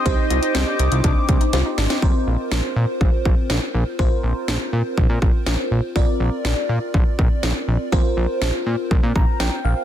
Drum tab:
HH |x-xxx-xxx-xxx-ox|----------------|----------------|----------------|
SD |----o-------o-oo|----o-------o---|----o-------o---|----o-------o---|
BD |o-------o-o-----|o-------o-o-----|o-------o-o-----|o-------o-o-----|

HH |----------------|
SD |----o-------o---|
BD |o-------o-o-----|